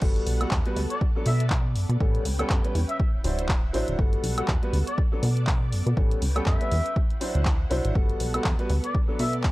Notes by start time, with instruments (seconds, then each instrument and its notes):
0.02 analog synth bass G1, grand piano G3 B3 F#4 A4, string machine B3 A4 F#5, kick, crash
0.16 closed hi-hat
0.27 analog synth bass B1, open hi-hat
0.41 grand piano G3 B3 F#4 A4, closed hi-hat, high woodblock
0.51 analog synth bass E2, kick, clap
0.66 grand piano G3 B3 F#4 B4, closed hi-hat
0.76 analog synth bass D2, open hi-hat
0.90 trumpet section D5, closed hi-hat
1.01 string machine D5, kick
1.15 grand piano F#3 B3 D4 A4
1.26 analog synth bass B2, trumpet section E5, open hi-hat
1.40 closed hi-hat
1.50 kick, clap
1.75 analog synth bass F#2, open hi-hat
1.89 analog synth bass B2, closed hi-hat
2.00 analog synth bass A1, grand piano G3 B3 C#4 A4, string machine C#4 B4 G5, kick
2.15 closed hi-hat
2.25 analog synth bass C#2, open hi-hat
2.39 grand piano G3 B3 C#4 A4, closed hi-hat, high woodblock
2.50 analog synth bass F#2, kick, clap
2.64 grand piano G3 B3 C#4 B4, closed hi-hat
2.75 analog synth bass E2, open hi-hat
2.89 trumpet section E5, closed hi-hat
2.99 string machine E4 C5 F#5, trumpet section E5, kick
3.14 analog synth bass D1
3.24 analog synth bass D1, grand piano F#3 D4 E4 C5, open hi-hat
3.39 closed hi-hat
3.49 kick, clap
3.73 analog synth bass A1, grand piano F#3 D4 E4 C5, open hi-hat
3.88 analog synth bass D1, closed hi-hat
3.98 analog synth bass G1, grand piano G3 B3 F#4 A4, string machine B3 A4, kick
4.13 closed hi-hat
4.23 analog synth bass B1, open hi-hat
4.37 grand piano G3 B3 F#4 A4, closed hi-hat, high woodblock
4.48 analog synth bass E2, kick, clap
4.62 grand piano G3 B3 F#4 B4, closed hi-hat
4.73 analog synth bass D2, open hi-hat
4.87 trumpet section D5, closed hi-hat
4.98 string machine B3 D5, kick
5.12 grand piano F#3 B3 D4 A4
5.23 analog synth bass B2, open hi-hat
5.37 closed hi-hat
5.47 kick, clap
5.72 analog synth bass F#2, open hi-hat
5.86 analog synth bass B2, closed hi-hat
5.97 analog synth bass A1, grand piano G3 B3 C#4 A4, string machine C#4 B4 G5, kick
6.11 closed hi-hat
6.22 analog synth bass C#2, open hi-hat
6.35 grand piano G3 B3 C#4 A4, closed hi-hat, high woodblock
6.46 analog synth bass F#2, trumpet section E5, kick, clap
6.60 grand piano G3 B3 C#4 B4, closed hi-hat
6.71 analog synth bass E2, open hi-hat
6.86 closed hi-hat
6.96 string machine E4 C5 F#5, kick
7.10 closed hi-hat
7.20 grand piano F#3 D4 E4 C5, open hi-hat
7.35 analog synth bass D2, closed hi-hat
7.45 kick, clap
7.70 analog synth bass C2, grand piano F#3 D4 E4 C5, open hi-hat
7.85 analog synth bass A1, closed hi-hat
7.95 analog synth bass G1, grand piano G3 B3 F#4 A4, string machine B3 A4, kick
8.09 closed hi-hat
8.20 analog synth bass B1, open hi-hat
8.34 grand piano G3 B3 F#4 A4, closed hi-hat, high woodblock
8.44 analog synth bass E2, kick, clap
8.58 grand piano G3 B3 F#4 B4, closed hi-hat
8.69 analog synth bass D2, open hi-hat
8.84 trumpet section D5, closed hi-hat
8.95 string machine A4 D5, kick
9.08 grand piano F#3 B3 D4 A4
9.19 analog synth bass B2, trumpet section E5, open hi-hat
9.33 closed hi-hat
9.43 kick, clap